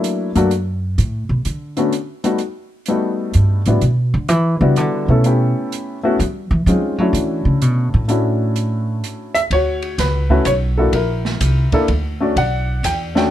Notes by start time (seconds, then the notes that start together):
Already playing: F#3 A3 A#3 D4 E4
0.04 closed hi-hat
0.35 F#2 F#3 A3 A#3 D4 F#4, closed hi-hat
0.51 closed hi-hat
0.98 A2, closed hi-hat
1.29 B2
1.45 D3, closed hi-hat
1.77 D3 A3 B3 C#4 F#4, closed hi-hat
1.93 closed hi-hat
2.24 G3 A3 B3 D#4 F#4, closed hi-hat
2.38 closed hi-hat
2.86 G3 A3 B3 D#4 F#4, closed hi-hat
3.34 G2, closed hi-hat
3.66 A2 G3 B3 D4 E4 F#4, closed hi-hat
3.81 B2, closed hi-hat
4.14 D3
4.29 E3, closed hi-hat
4.61 C#3 G3 B3 D4 E4 F#4
4.76 D3, closed hi-hat
5.08 B2 A3 B3 C#4 E4 A4
5.24 A3 B3 C#4 E4 G4, closed hi-hat
5.72 closed hi-hat
6.03 A3 B3 C#4 E4 F#4
6.19 G3, closed hi-hat
6.51 E3
6.66 F#3 G#3 C4 C#4 D#4 F4, closed hi-hat
6.82 G3
6.98 F#3 A3 C#4 D4 E4 F#4
7.13 E3, closed hi-hat
7.45 C#3
7.62 B2, closed hi-hat
7.94 A2
8.08 A3 C#4 D4 E4 F#4, closed hi-hat
8.56 closed hi-hat
9.04 closed hi-hat
9.34 E5, closed hi-hat
9.50 D2 C#5, kick, ride
9.54 F#4
9.82 ride
9.98 C#2 B4, kick, snare, hi-hat pedal, ride
10.30 A3 C#4 E4 F#4 B4, kick
10.45 B1 C#5, kick, hi-hat pedal, ride
10.78 A#3 D4 E4 F#4 A4
10.93 A#1 E4 A#4, kick, ride
11.25 snare
11.41 C2, kick, hi-hat pedal, ride
11.72 A#3 D4 E4 A4, muted upright bass stroke, kick, ride
11.88 D2, kick, ride
12.21 A3 C#4 D4 F#4 D5
12.36 B1 D5 F#5, kick, ride
12.83 E2 G5, kick, hi-hat pedal, ride
13.15 A3 C#4 D4 F#4 G5, snare